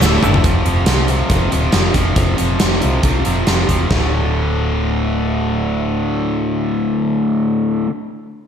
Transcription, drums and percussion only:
0.01 snare medium
0.01 shaker loud
0.23 mid tom loud
0.23 shaker medium
0.34 floor tom loud
0.44 kick loud
0.44 closed hi-hat medium
0.66 closed hi-hat medium
0.86 snare loud
0.86 closed hi-hat medium
1.08 closed hi-hat medium
1.30 kick loud
1.30 closed hi-hat medium
1.52 closed hi-hat medium
1.72 snare loud
1.72 closed hi-hat medium
1.94 kick medium
1.94 closed hi-hat medium
2.16 kick loud
2.16 closed hi-hat medium
2.38 closed hi-hat medium
2.60 snare loud
2.60 closed hi-hat medium
2.82 closed hi-hat medium
3.03 kick loud
3.03 closed hi-hat medium
3.25 closed hi-hat medium
3.47 snare medium
3.47 closed hi-hat medium
3.69 kick medium
3.69 closed hi-hat medium
3.91 kick medium
3.91 snare medium

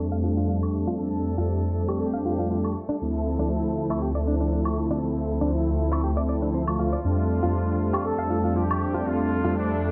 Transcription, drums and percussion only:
0.25 shaker medium
0.51 shaker soft
0.63 high woodblock medium
0.76 shaker medium
0.88 shaker soft
1.01 shaker medium
1.26 shaker medium
1.51 shaker medium
1.76 shaker medium
1.88 high woodblock medium
1.88 shaker soft
2.27 shaker medium
2.40 shaker soft
2.52 shaker soft
2.64 high woodblock medium
2.78 shaker medium
2.91 shaker soft
3.02 shaker medium
3.27 shaker medium
3.41 shaker soft
3.53 shaker medium
3.78 shaker medium
3.90 high woodblock medium
3.90 shaker soft
4.03 shaker medium
4.28 shaker medium
4.42 shaker soft
4.54 shaker medium
4.65 high woodblock medium
4.79 shaker medium
4.92 shaker soft
5.03 shaker medium
5.18 shaker soft
5.29 shaker medium
5.43 shaker soft
5.54 shaker medium
5.80 shaker medium
5.93 high woodblock medium
5.93 shaker soft
6.04 shaker soft
6.18 shaker soft
6.30 shaker medium
6.43 shaker soft
6.56 shaker medium
6.68 high woodblock medium
6.68 shaker soft
6.80 shaker medium
6.94 shaker soft
7.06 shaker medium
7.31 shaker medium
7.44 shaker soft
7.56 shaker medium
7.81 shaker medium
7.94 high woodblock medium
7.94 shaker soft
8.06 shaker soft
8.32 shaker medium
8.45 shaker soft
8.57 shaker soft
8.71 high woodblock medium
8.82 shaker medium
8.95 shaker soft
9.08 shaker medium
9.33 shaker medium
9.46 shaker soft
9.58 shaker medium
9.83 shaker medium

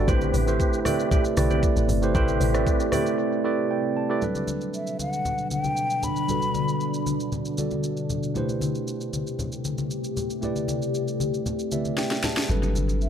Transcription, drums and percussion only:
0.08 kick loud
0.08 low conga medium
0.08 shaker medium
0.21 high conga medium
0.21 shaker medium
0.34 open hi-hat medium
0.34 high conga medium
0.34 shaker medium
0.48 shaker medium
0.60 kick medium
0.60 shaker medium
0.73 shaker medium
0.85 cross-stick medium
0.85 open hi-hat medium
0.85 high conga medium
0.85 low conga medium
0.85 shaker loud
0.99 shaker medium
1.11 kick loud
1.11 low conga medium
1.11 shaker medium
1.25 shaker medium
1.37 cross-stick medium
1.37 open hi-hat medium
1.37 high conga medium
1.37 shaker loud
1.50 high conga medium
1.50 shaker soft
1.63 kick loud
1.63 shaker medium
1.76 shaker medium
1.89 open hi-hat medium
1.89 low conga medium
1.89 shaker loud
2.02 shaker medium
2.15 kick loud
2.15 low conga medium
2.15 shaker medium
2.28 high conga medium
2.28 shaker soft
2.40 open hi-hat medium
2.40 high conga medium
2.40 shaker medium
2.54 cross-stick medium
2.54 shaker medium
2.67 kick medium
2.67 shaker medium
2.80 shaker medium
2.92 cross-stick medium
2.92 open hi-hat medium
2.92 high conga medium
2.92 low conga medium
2.92 shaker loud
3.06 shaker medium
4.22 low conga medium
4.22 shaker medium
4.35 high conga soft
4.35 shaker soft
4.47 high conga medium
4.47 shaker medium
4.61 shaker medium
4.74 shaker medium
4.87 shaker medium
4.99 high conga medium
4.99 shaker medium
5.13 shaker medium
5.25 low conga medium
5.25 shaker medium
5.38 shaker medium
5.51 high conga medium
5.51 shaker loud
5.64 high conga medium
5.64 shaker soft
5.77 shaker medium
5.90 shaker medium
6.03 low conga medium
6.03 shaker medium
6.16 shaker medium
6.29 low conga medium
6.29 shaker medium
6.42 high conga soft
6.42 shaker soft
6.54 high conga medium
6.54 shaker medium
6.68 shaker medium
6.81 shaker medium
6.94 shaker medium
7.06 high conga medium
7.06 shaker medium
7.20 shaker medium
7.32 low conga medium
7.32 shaker medium
7.45 shaker soft
7.58 high conga medium
7.58 shaker loud
7.71 high conga medium
7.71 shaker soft
7.84 shaker medium
7.97 shaker medium
8.10 low conga medium
8.10 shaker medium
8.23 shaker medium
8.36 low conga medium
8.36 shaker medium
8.49 high conga medium
8.49 shaker soft
8.61 high conga medium
8.61 shaker medium
8.75 shaker medium
8.88 shaker medium
9.01 shaker medium
9.13 high conga medium
9.13 shaker medium
9.27 shaker medium
9.39 low conga medium
9.39 shaker medium
9.52 shaker medium
9.65 high conga medium
9.65 shaker loud
9.78 high conga medium
9.78 shaker soft
9.91 shaker medium
10.04 shaker medium
10.17 low conga medium
10.17 shaker medium
10.30 shaker medium
10.42 low conga medium
10.42 shaker medium
10.56 high conga medium
10.56 shaker soft
10.68 high conga medium
10.68 shaker medium
10.82 shaker medium
10.95 shaker medium
11.08 shaker medium
11.20 high conga medium
11.20 shaker medium
11.34 shaker medium
11.46 low conga medium
11.46 shaker medium
11.59 shaker medium
11.72 high conga medium
11.72 shaker loud
11.85 high conga medium
11.85 shaker soft
11.98 snare medium
11.98 shaker medium
12.11 snare medium
12.11 shaker medium
12.24 snare medium
12.24 low conga medium
12.24 shaker medium
12.37 snare medium
12.37 shaker medium
12.50 low conga medium
12.50 shaker medium
12.63 high conga soft
12.63 shaker soft
12.75 high conga medium
12.75 shaker medium
12.89 shaker medium
13.01 shaker medium

